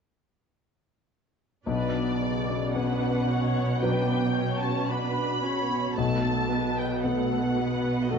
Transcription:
1.66 grand piano B1, cello section B2, harp B2, viola section D4 B4, violin section D5
1.94 harp B3
2.22 viola section C#3 D5, harp B4
2.50 harp C#4
2.74 grand piano B3, viola section D4 B4, harp C#5, violin section F#5
3.03 harp B4
3.29 viola section C#4 C#5
3.58 harp B3
3.82 grand piano F#3 B4, harp F#3, viola section D4 B4, violin section G5
4.11 harp B3
4.36 viola section C#4 C#5, harp B4
4.62 harp F#4, violin section A5
4.88 viola section D4 B4, harp F#5, violin section B5
5.18 harp B4
5.42 viola section C#4 C#5, harp F#4
5.71 harp B3
5.96 grand piano B1, cello section B2, harp B2, viola section A3 A4, violin section A5
6.25 harp B3
6.49 viola section B3 B4, harp A4
6.78 harp B4, violin section G5
7.02 viola section A3 A4, grand piano B3, violin section F#5, harp F#5
7.32 harp B4
7.56 viola section B3 B4, harp F#4
7.86 harp B3
8.10 harp F#3, viola section A3 A4, grand piano F#4 A4, violin section D#5

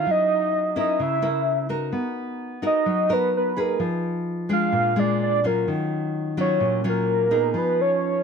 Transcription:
Already playing: nylon-string guitar C#4 E4 A#4, soft synth lead F5
0.06 nylon-string guitar F#3
0.11 soft synth lead D#5
0.76 nylon-string guitar C#4 E4 A#4
0.80 soft synth lead D#5
0.99 nylon-string guitar C#3, soft synth lead E5
1.22 nylon-string guitar C#4 E4 A#4
1.69 nylon-string guitar D#4 F#4 A#4
1.92 nylon-string guitar B3
2.62 nylon-string guitar D#4 F#4 A#4
2.66 soft synth lead D#5
2.86 nylon-string guitar F#3
3.09 nylon-string guitar D#4 F#4 A#4
3.13 soft synth lead B4
3.37 soft synth lead B4
3.57 nylon-string guitar D#4 G#4 B4, soft synth lead A#4
3.80 nylon-string guitar F3
4.49 nylon-string guitar G#3 D4 F4, soft synth lead F5
4.72 nylon-string guitar A#2
4.96 nylon-string guitar G#3 D4 F4, soft synth lead D5
5.23 soft synth lead D5
5.44 nylon-string guitar F#3 C#4 F4, soft synth lead A#4
5.68 nylon-string guitar D#3
6.37 nylon-string guitar F#3 C#4 F4, soft synth lead C#5
6.60 nylon-string guitar A#2
6.84 nylon-string guitar F#3 C#4 F4
6.89 soft synth lead A#4
7.31 nylon-string guitar B3 D#4 G#4
7.54 nylon-string guitar F3
7.58 soft synth lead B4
7.81 soft synth lead C#5

